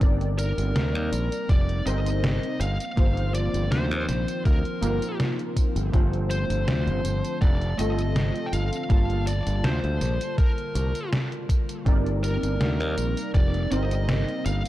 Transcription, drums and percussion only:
0.01 kick loud
0.01 closed hi-hat medium
0.01 tambourine soft
0.21 closed hi-hat soft
0.39 closed hi-hat medium
0.39 tambourine medium
0.58 closed hi-hat medium
0.58 tambourine soft
0.76 snare loud
0.76 closed hi-hat medium
0.76 tambourine soft
0.95 closed hi-hat soft
1.13 closed hi-hat medium
1.13 tambourine medium
1.32 closed hi-hat medium
1.32 tambourine soft
1.49 kick loud
1.49 closed hi-hat medium
1.49 tambourine soft
1.69 closed hi-hat soft
1.87 closed hi-hat loud
1.87 tambourine medium
2.06 closed hi-hat medium
2.06 tambourine soft
2.24 snare loud
2.24 closed hi-hat medium
2.24 tambourine soft
2.43 closed hi-hat soft
2.61 closed hi-hat medium
2.61 tambourine medium
2.80 closed hi-hat medium
2.80 tambourine soft
2.97 kick loud
2.97 closed hi-hat medium
2.97 tambourine soft
3.17 closed hi-hat soft
3.35 closed hi-hat medium
3.35 tambourine medium
3.54 closed hi-hat medium
3.54 tambourine soft
3.72 snare loud
3.72 closed hi-hat medium
3.72 tambourine soft
3.91 closed hi-hat soft
4.09 snare soft
4.09 closed hi-hat medium
4.09 tambourine medium
4.28 closed hi-hat medium
4.28 tambourine soft
4.45 kick loud
4.45 closed hi-hat medium
4.45 tambourine soft
4.65 closed hi-hat soft
4.83 closed hi-hat loud
4.83 tambourine medium
5.02 closed hi-hat medium
5.02 tambourine soft
5.20 snare loud
5.20 closed hi-hat medium
5.20 tambourine soft
5.39 closed hi-hat soft
5.57 kick medium
5.57 closed hi-hat loud
5.57 tambourine medium
5.76 closed hi-hat medium
5.76 tambourine soft
5.94 kick loud
5.94 closed hi-hat medium
5.94 tambourine soft
6.13 closed hi-hat soft
6.31 closed hi-hat medium
6.31 tambourine medium
6.50 closed hi-hat medium
6.50 tambourine soft
6.68 snare loud
6.68 closed hi-hat medium
6.68 tambourine soft
6.87 closed hi-hat soft
7.05 closed hi-hat loud
7.05 tambourine medium
7.25 closed hi-hat medium
7.25 tambourine soft
7.42 kick loud
7.42 closed hi-hat soft
7.42 tambourine soft
7.61 closed hi-hat soft
7.79 closed hi-hat loud
7.79 tambourine medium
7.99 closed hi-hat medium
7.99 tambourine soft
8.16 snare loud
8.16 closed hi-hat medium
8.16 tambourine soft
8.36 closed hi-hat soft
8.53 closed hi-hat medium
8.53 tambourine medium
8.73 closed hi-hat medium
8.73 tambourine soft
8.90 kick loud
8.90 closed hi-hat medium
8.90 tambourine soft
9.10 closed hi-hat soft
9.27 closed hi-hat medium
9.27 tambourine medium
9.47 closed hi-hat medium
9.47 tambourine soft
9.64 snare loud
9.64 closed hi-hat medium
9.64 tambourine soft
9.84 closed hi-hat soft
10.01 snare soft
10.01 closed hi-hat medium
10.01 tambourine medium
10.21 closed hi-hat medium
10.21 tambourine soft
10.38 kick loud
10.38 closed hi-hat medium
10.38 tambourine soft
10.58 closed hi-hat soft
10.76 closed hi-hat medium
10.76 tambourine medium
10.95 closed hi-hat medium
10.95 tambourine soft
11.13 snare loud
11.13 closed hi-hat medium
11.13 tambourine soft
11.32 closed hi-hat soft
11.49 kick medium
11.49 closed hi-hat medium
11.49 tambourine medium
11.69 closed hi-hat medium
11.69 tambourine soft
11.86 kick loud
11.86 closed hi-hat medium
11.86 tambourine soft
12.06 closed hi-hat soft
12.24 closed hi-hat medium
12.24 tambourine medium
12.43 closed hi-hat medium
12.43 tambourine soft
12.61 snare loud
12.61 closed hi-hat medium
12.61 tambourine soft
12.80 closed hi-hat soft
12.98 closed hi-hat medium
12.98 tambourine medium
13.17 closed hi-hat medium
13.17 tambourine soft
13.34 kick loud
13.34 closed hi-hat medium
13.34 tambourine soft
13.54 closed hi-hat soft
13.72 closed hi-hat medium
13.72 tambourine medium
13.91 closed hi-hat soft
13.91 tambourine soft
14.09 snare loud
14.09 closed hi-hat soft
14.09 tambourine soft
14.29 closed hi-hat soft
14.46 closed hi-hat medium
14.46 tambourine medium

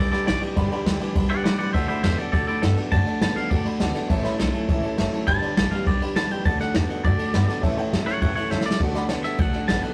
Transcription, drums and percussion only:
0.13 snare soft
0.13 ride medium
0.28 snare loud
0.28 ride medium
0.42 ride medium
0.57 kick loud
0.57 ride medium
0.72 ride medium
0.86 snare loud
0.86 ride medium
1.01 ride medium
1.16 kick loud
1.16 ride medium
1.30 ride medium
1.45 snare loud
1.45 ride medium
1.60 ride medium
1.74 kick loud
1.74 ride medium
1.89 ride medium
2.04 snare loud
2.04 ride medium
2.19 ride medium
2.33 kick loud
2.33 ride medium
2.48 ride medium
2.63 snare loud
2.63 ride medium
2.77 ride medium
2.92 kick loud
2.92 ride medium
3.07 ride medium
3.21 snare loud
3.21 ride medium
3.36 ride medium
3.51 kick loud
3.51 ride medium
3.65 ride medium
3.80 snare loud
3.80 ride medium
3.95 snare soft
3.95 ride medium
4.10 kick loud
4.10 ride medium
4.24 snare soft
4.24 ride medium
4.40 snare loud
4.40 ride medium
4.54 ride medium
4.69 kick loud
4.69 ride medium
4.83 ride medium
4.98 snare loud
4.98 ride medium
5.13 ride medium
5.27 kick loud
5.27 ride medium
5.42 ride medium
5.57 snare loud
5.57 ride medium
5.72 ride medium
5.87 kick loud
5.87 ride medium
6.02 ride medium
6.16 snare loud
6.16 ride medium
6.31 ride medium
6.45 kick loud
6.45 ride medium
6.60 snare soft
6.60 ride medium
6.74 snare loud
6.74 ride medium
6.90 ride medium
7.04 kick loud
7.04 ride medium
7.19 ride medium
7.34 snare loud
7.34 ride medium
7.49 snare soft
7.49 ride medium
7.63 kick loud
7.63 ride medium
7.78 ride medium
7.93 snare loud
7.93 ride medium
8.08 snare soft
8.08 ride medium
8.22 kick loud
8.22 ride medium
8.37 ride medium
8.51 snare medium
8.61 snare medium
8.70 snare loud
8.80 kick loud
8.80 ride medium
8.95 snare soft
8.95 ride medium
9.09 snare loud
9.09 ride medium
9.24 snare soft
9.24 ride medium
9.38 kick loud
9.38 ride medium
9.53 snare soft
9.53 ride medium
9.69 snare loud
9.69 ride medium
9.83 ride medium

